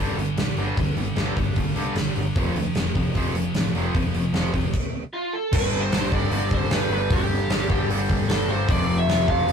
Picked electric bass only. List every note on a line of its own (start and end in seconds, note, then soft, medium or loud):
0.00 0.12 G1 medium
0.17 0.31 G1 medium
0.37 0.51 B1 medium
0.57 0.71 G1 medium
0.77 0.91 G1 medium
0.96 1.11 G1 medium
1.17 1.31 G1 medium
1.36 1.50 G1 medium
1.56 1.70 G1 medium
1.75 1.89 C2 medium
1.95 2.09 G1 medium
2.15 2.30 G1 medium
2.36 2.50 F1 medium
2.55 2.69 D2 medium
2.75 2.89 F1 medium
2.95 3.09 F1 medium
3.15 3.29 F1 medium
3.34 3.48 F1 medium
3.54 3.68 A1 medium
3.73 3.88 F1 medium
3.95 4.08 F1 medium
4.13 4.27 F1 medium
4.33 4.47 F1 medium
4.53 4.67 F1 medium
5.53 5.71 G1 loud
5.71 5.90 G1 loud
5.91 6.10 G1 loud
6.12 6.30 G1 medium
6.31 6.50 G1 medium
6.51 6.69 G1 medium
6.71 6.89 G1 medium
6.90 7.08 G1 medium
7.10 7.29 G1 medium
7.30 7.48 G1 medium
7.48 7.67 G1 loud
7.70 7.88 G1 medium
7.89 8.07 G1 medium
8.10 8.27 G1 medium
8.28 8.46 G1 medium
8.47 8.66 G1 medium
8.68 8.86 F1 loud
8.87 9.05 F1 medium
9.06 9.25 F1 loud
9.28 9.46 F1 medium
9.46 9.52 F1 medium